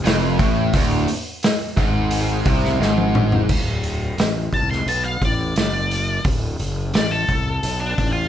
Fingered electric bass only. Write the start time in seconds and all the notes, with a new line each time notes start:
0.05 F1
0.39 A1
0.74 D1
1.77 G#1
2.46 C2
2.81 G#1
3.49 D1
4.18 A1
4.53 C2
4.86 B1
5.21 A1
5.56 F#1
6.25 D1
6.60 F#1
6.94 A1
7.29 C2
7.63 B1
7.99 A1